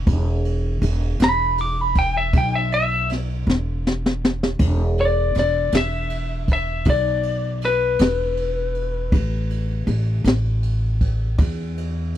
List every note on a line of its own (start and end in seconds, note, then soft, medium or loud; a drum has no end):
0.07 0.79 E1 loud
0.07 kick loud
0.07 ride medium
0.45 ride medium
0.82 1.17 E1 medium
0.82 ride medium
1.20 2.29 E1 medium
1.20 snare loud
1.20 ride medium
1.24 1.59 B5 medium
1.58 1.81 D6 medium
1.58 ride medium
1.81 1.98 B5 medium
1.95 2.16 G5 medium
1.95 kick medium
1.95 ride medium
2.17 2.35 E5 medium
2.33 3.43 B1 loud
2.33 kick loud
2.33 ride medium
2.38 2.54 G5 medium
2.55 2.72 E5 medium
2.72 3.09 E5 loud
2.72 ride medium
3.09 snare soft
3.09 ride medium
3.47 4.56 E1 medium
3.47 snare medium
3.87 snare medium
4.06 snare medium
4.25 snare medium
4.43 snare medium
4.59 5.31 E1 loud
4.59 kick medium
4.59 crash medium
4.98 5.36 D5 medium
4.98 ride medium
5.35 5.70 E1 medium
5.35 snare soft
5.35 ride medium
5.39 5.74 D5 medium
5.72 6.82 E1 medium
5.72 snare loud
5.72 ride medium
5.77 6.48 E5 medium
6.10 ride medium
6.48 kick medium
6.48 ride medium
6.53 6.87 E5 medium
6.85 7.95 B1 loud
6.85 kick loud
6.85 ride medium
6.90 7.61 D5 medium
7.23 ride medium
7.61 9.86 B4 medium
7.61 snare soft
7.61 ride medium
7.99 9.09 E1 medium
7.99 snare loud
7.99 ride medium
8.37 ride medium
8.74 ride soft
9.12 9.84 A1 medium
9.12 kick medium
9.12 ride medium
9.50 ride medium
9.87 10.22 A1 medium
9.87 ride medium
10.24 11.34 A1 medium
10.24 snare loud
10.24 ride medium
10.63 ride medium
11.01 kick medium
11.01 ride medium
11.38 12.17 E2 loud
11.38 kick loud
11.38 ride medium
11.77 ride medium